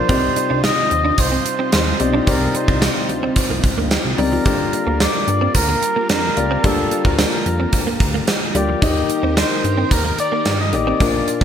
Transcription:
Already playing: grand piano A#3 D4 F4 D5, string machine F4, flugelhorn C5
0.09 analog synth bass C2, grand piano C3 C4 D#4 G4 D5, string machine C3 G3 D#4, clean electric guitar C4, kick, closed hi-hat, cowbell
0.36 muted clean electric guitar stroke, closed hi-hat
0.50 analog synth bass C2, clean electric guitar D4
0.64 clean electric guitar D#4, flugelhorn D#5, snare, closed hi-hat, cowbell
0.91 analog synth bass D#2, muted clean electric guitar stroke, closed hi-hat
1.05 clean electric guitar D4
1.18 analog synth bass C2, flugelhorn C5, kick, closed hi-hat, cowbell
1.32 clean electric guitar C4
1.45 muted clean electric guitar stroke, closed hi-hat
1.59 clean electric guitar C4
1.72 analog synth bass D#2, clean electric guitar D#4, flugelhorn C5, snare, closed hi-hat, cowbell
1.87 muted clean electric guitar stroke
1.99 analog synth bass B1, grand piano C4 D#4 G4 D5, closed hi-hat
2.13 clean electric guitar D4
2.26 analog synth bass C2, grand piano C3 C4 D#4 G4 D5, clean electric guitar C4, flugelhorn A#4, kick, closed hi-hat, cowbell
2.54 flugelhorn C5, muted clean electric guitar stroke, closed hi-hat
2.68 analog synth bass C2, clean electric guitar C4, kick
2.82 clean electric guitar D4, snare, closed hi-hat, tambourine, cowbell
3.09 analog synth bass D2, muted clean electric guitar stroke, closed hi-hat
3.23 clean electric guitar C4
3.36 kick, closed hi-hat, cowbell
3.50 analog synth bass C2, clean electric guitar A#3
3.64 analog synth bass C2, muted clean electric guitar stroke, kick, closed hi-hat
3.77 analog synth bass D2, clean electric guitar A#3
3.91 muted clean electric guitar stroke, snare, closed hi-hat, tambourine, cowbell
4.05 analog synth bass C2
4.17 analog synth bass C#2, clean electric guitar G3, grand piano C4 D#4 G4 D5, flugelhorn A#4, open hi-hat
4.32 clean electric guitar F3
4.45 analog synth bass D2, grand piano D3 A#3 F4 G4 D5, clean electric guitar G3, string machine A#3 F4, kick, closed hi-hat, cowbell
4.73 muted clean electric guitar stroke, closed hi-hat
4.87 analog synth bass D2, clean electric guitar A#3
5.00 clean electric guitar D4, flugelhorn D5, snare, closed hi-hat, tambourine, cowbell
5.28 analog synth bass G2, muted clean electric guitar stroke, closed hi-hat
5.41 clean electric guitar C4
5.55 analog synth bass D2, flugelhorn A#4, kick, closed hi-hat, cowbell
5.69 clean electric guitar A#3
5.82 muted clean electric guitar stroke, closed hi-hat
5.96 clean electric guitar A#3
6.09 analog synth bass F2, clean electric guitar D4, flugelhorn A#4, snare, closed hi-hat, tambourine, cowbell
6.24 muted clean electric guitar stroke
6.36 analog synth bass C#2, grand piano A#3 F4 G4 D5, closed hi-hat
6.51 clean electric guitar C4
6.64 analog synth bass D2, grand piano D3 A#3 F4 G4 D5, clean electric guitar G3, flugelhorn A4, kick, closed hi-hat, cowbell
6.91 muted clean electric guitar stroke, closed hi-hat
7.05 analog synth bass D2, clean electric guitar A#3, flugelhorn A#4, kick
7.18 clean electric guitar D4, flugelhorn A#4, snare, closed hi-hat, tambourine, cowbell
7.46 analog synth bass F2, muted clean electric guitar stroke, closed hi-hat
7.60 clean electric guitar C4
7.73 analog synth bass D2, kick, closed hi-hat, cowbell
7.87 clean electric guitar A#3
8.00 analog synth bass D2, muted clean electric guitar stroke, kick, closed hi-hat
8.14 clean electric guitar A#3
8.27 muted clean electric guitar stroke, snare, closed hi-hat, tambourine, cowbell
8.54 analog synth bass D2, clean electric guitar G3, grand piano A#3 F4 G4 D5, flugelhorn G4, closed hi-hat
8.69 clean electric guitar F3
8.81 analog synth bass D#2, grand piano D#3 A#3 D#4 G4 D#5, string machine D#3 D#4 G4 A#4, clean electric guitar D#4, kick, closed hi-hat, cowbell
9.10 muted clean electric guitar stroke, closed hi-hat
9.23 analog synth bass D#2, clean electric guitar C4
9.37 clean electric guitar D4, flugelhorn C5, snare, closed hi-hat, tambourine, cowbell
9.64 analog synth bass G2, muted clean electric guitar stroke, closed hi-hat
9.77 clean electric guitar C4
9.91 analog synth bass D#2, flugelhorn A#4, kick, closed hi-hat, cowbell
10.05 clean electric guitar A#3, flugelhorn A#4
10.18 flugelhorn D5, muted clean electric guitar stroke, closed hi-hat
10.32 clean electric guitar A#3
10.45 analog synth bass G2, clean electric guitar D4, snare, closed hi-hat, tambourine, cowbell
10.60 flugelhorn D#5, muted clean electric guitar stroke
10.72 analog synth bass A1, grand piano A#3 D#4 G4 D#5, flugelhorn D5, closed hi-hat
10.87 clean electric guitar C4
11.00 analog synth bass A#1, grand piano A#2 A#3 D4 F4 C5, string machine A#3 D4 F4, clean electric guitar A#3, kick, closed hi-hat, cowbell
11.07 grand piano D5
11.28 muted clean electric guitar stroke, closed hi-hat
11.41 kick

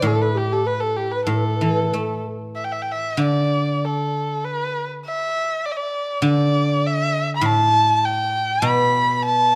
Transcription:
0.02 guzheng A2, xiao A4
0.07 erhu A4
0.22 erhu B4
0.35 xiao G4, erhu G4
0.52 erhu A4
0.66 xiao B4, erhu B4
0.81 erhu A4, xiao A4
0.96 erhu G4, xiao G4
1.12 erhu B4, xiao B4
1.27 guzheng A2, erhu A4, xiao A4
1.37 xiao B4
1.45 xiao A4
1.56 xiao B4
1.61 guzheng E3, xiao A4
1.72 xiao B4
1.81 xiao A4
1.87 xiao B4
1.93 guzheng A3, xiao A4
2.55 erhu E5
2.64 erhu G5
2.72 erhu E5
2.82 erhu G5
2.92 erhu E5
3.17 guzheng D3
3.22 erhu D5
3.85 erhu A4
4.45 erhu B4
5.05 erhu E5
5.65 erhu D5
5.71 erhu E5
5.77 erhu D5
6.22 guzheng D3, erhu D5
6.86 erhu E5
7.36 erhu B5
7.41 guzheng A2
7.46 erhu A5
8.05 erhu G5
8.62 guzheng B2
8.67 erhu B5
9.26 erhu A5

